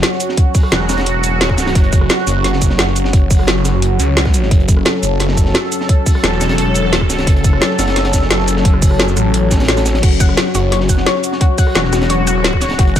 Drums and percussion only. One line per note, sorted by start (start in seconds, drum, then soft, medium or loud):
0.02 snare loud
0.02 closed hi-hat medium
0.02 closed hi-hat loud
0.13 snare soft
0.20 closed hi-hat medium
0.20 shaker medium
0.29 snare medium
0.37 kick loud
0.37 closed hi-hat medium
0.37 closed hi-hat loud
0.55 kick loud
0.55 closed hi-hat medium
0.55 open hi-hat medium
0.55 shaker medium
0.63 cross-stick soft
0.72 snare loud
0.72 closed hi-hat loud
0.81 snare soft
0.89 cross-stick soft
0.89 snare loud
0.89 closed hi-hat medium
0.89 shaker medium
0.98 snare loud
0.98 closed hi-hat medium
1.06 closed hi-hat medium
1.06 closed hi-hat loud
1.24 closed hi-hat medium
1.24 shaker medium
1.41 snare loud
1.41 closed hi-hat loud
1.41 closed hi-hat medium
1.49 kick medium
1.49 cross-stick soft
1.57 snare loud
1.57 closed hi-hat medium
1.57 shaker medium
1.66 snare loud
1.66 closed hi-hat medium
1.75 kick loud
1.75 closed hi-hat medium
1.84 closed hi-hat soft
1.93 kick loud
1.93 closed hi-hat medium
1.93 shaker medium
2.01 cross-stick soft
2.09 snare loud
2.09 closed hi-hat loud
2.09 closed hi-hat medium
2.18 snare soft
2.27 closed hi-hat medium
2.27 shaker medium
2.44 snare soft
2.44 closed hi-hat medium
2.44 closed hi-hat loud
2.53 snare medium
2.62 kick medium
2.62 closed hi-hat medium
2.62 shaker medium
2.70 snare medium
2.78 snare loud
2.78 closed hi-hat medium
2.87 snare soft
2.96 closed hi-hat medium
2.96 shaker medium
3.05 snare medium
3.13 kick loud
3.13 closed hi-hat medium
3.13 closed hi-hat loud
3.30 kick loud
3.30 closed hi-hat medium
3.30 open hi-hat medium
3.30 shaker medium
3.39 cross-stick soft
3.47 snare loud
3.47 closed hi-hat medium
3.56 snare soft
3.64 cross-stick soft
3.64 snare medium
3.64 closed hi-hat medium
3.64 shaker medium
3.82 closed hi-hat medium
4.00 closed hi-hat medium
4.00 shaker medium
4.17 snare loud
4.17 closed hi-hat medium
4.25 kick medium
4.25 cross-stick soft
4.25 snare medium
4.34 closed hi-hat medium
4.34 shaker medium
4.43 snare soft
4.51 kick loud
4.51 closed hi-hat medium
4.60 closed hi-hat soft
4.68 kick loud
4.68 closed hi-hat medium
4.68 shaker medium
4.77 cross-stick soft
4.85 snare loud
4.85 closed hi-hat medium
4.85 closed hi-hat loud
4.95 snare soft
5.03 closed hi-hat medium
5.03 shaker medium
5.20 snare soft
5.20 closed hi-hat medium
5.29 snare medium
5.37 kick medium
5.37 closed hi-hat medium
5.37 shaker medium
5.46 snare soft
5.54 snare loud
5.54 closed hi-hat medium
5.64 snare soft
5.72 closed hi-hat medium
5.72 shaker medium
5.81 snare medium
5.89 kick loud
5.89 closed hi-hat loud
5.89 closed hi-hat medium
6.06 kick loud
6.06 closed hi-hat medium
6.06 open hi-hat medium
6.06 shaker medium
6.15 cross-stick soft
6.23 snare loud
6.23 closed hi-hat loud
6.23 closed hi-hat medium
6.32 snare soft
6.41 cross-stick soft
6.41 snare loud
6.41 closed hi-hat medium
6.41 shaker medium
6.49 snare loud
6.49 closed hi-hat medium
6.58 closed hi-hat loud
6.58 closed hi-hat medium
6.74 closed hi-hat medium
6.74 shaker medium
6.93 snare loud
6.93 closed hi-hat loud
6.93 closed hi-hat medium
7.01 kick medium
7.01 cross-stick soft
7.10 snare loud
7.10 closed hi-hat medium
7.10 shaker medium
7.18 snare loud
7.18 closed hi-hat medium
7.27 kick loud
7.27 closed hi-hat loud
7.27 closed hi-hat medium
7.37 closed hi-hat soft
7.44 kick loud
7.44 closed hi-hat medium
7.44 shaker medium
7.53 cross-stick soft
7.61 snare loud
7.61 closed hi-hat loud
7.61 closed hi-hat medium
7.71 snare soft
7.79 cross-stick soft
7.79 snare loud
7.79 closed hi-hat medium
7.79 shaker medium
7.88 snare loud
7.88 closed hi-hat medium
7.96 snare soft
7.96 snare loud
7.96 closed hi-hat medium
8.04 snare loud
8.04 closed hi-hat medium
8.13 kick medium
8.13 snare loud
8.13 closed hi-hat medium
8.13 shaker medium
8.22 snare medium
8.30 snare loud
8.30 closed hi-hat medium
8.40 snare soft
8.48 closed hi-hat medium
8.48 shaker medium
8.57 snare medium
8.65 kick loud
8.65 closed hi-hat loud
8.74 cross-stick soft
8.82 kick loud
8.82 closed hi-hat medium
8.82 open hi-hat medium
8.82 shaker medium
8.91 cross-stick soft
8.99 snare loud
8.99 closed hi-hat loud
8.99 closed hi-hat medium
9.08 snare soft
9.08 shaker soft
9.17 cross-stick soft
9.17 closed hi-hat medium
9.17 shaker medium
9.34 closed hi-hat medium
9.34 closed hi-hat loud
9.51 kick medium
9.51 snare loud
9.51 closed hi-hat medium
9.51 shaker medium
9.60 snare medium
9.60 closed hi-hat medium
9.63 snare loud
9.63 closed hi-hat medium
9.68 snare loud
9.68 closed hi-hat loud
9.68 closed hi-hat medium
9.77 cross-stick soft
9.77 snare loud
9.77 closed hi-hat medium
9.77 shaker soft
9.85 snare loud
9.85 closed hi-hat medium
9.85 shaker medium
9.94 snare loud
9.94 closed hi-hat medium
10.03 kick loud
10.03 closed hi-hat loud
10.03 closed hi-hat medium
10.03 crash medium
10.12 closed hi-hat soft
10.20 kick loud
10.20 closed hi-hat medium
10.20 shaker medium
10.29 cross-stick soft
10.37 snare loud
10.37 closed hi-hat medium
10.37 closed hi-hat loud
10.47 snare soft
10.55 closed hi-hat medium
10.55 shaker medium
10.72 snare soft
10.72 closed hi-hat loud
10.80 snare medium
10.89 kick medium
10.89 closed hi-hat medium
10.89 shaker medium
10.97 snare medium
11.06 snare loud
11.06 closed hi-hat loud
11.06 closed hi-hat medium
11.16 snare soft
11.24 closed hi-hat medium
11.24 shaker medium
11.32 snare medium
11.41 kick loud
11.41 closed hi-hat medium
11.58 kick loud
11.58 closed hi-hat medium
11.58 open hi-hat medium
11.58 shaker medium
11.67 cross-stick soft
11.75 snare loud
11.75 closed hi-hat medium
11.75 closed hi-hat loud
11.85 snare soft
11.92 cross-stick soft
11.92 snare loud
11.92 closed hi-hat medium
11.92 shaker medium
12.02 snare loud
12.02 closed hi-hat medium
12.09 closed hi-hat loud
12.27 closed hi-hat medium
12.27 shaker medium
12.44 snare loud
12.44 closed hi-hat medium
12.53 kick medium
12.53 cross-stick soft
12.61 snare loud
12.61 closed hi-hat medium
12.61 shaker medium
12.69 snare loud
12.69 closed hi-hat medium
12.79 kick loud
12.79 closed hi-hat loud
12.79 closed hi-hat medium
12.87 closed hi-hat soft
12.96 kick loud
12.96 closed hi-hat medium
12.96 shaker medium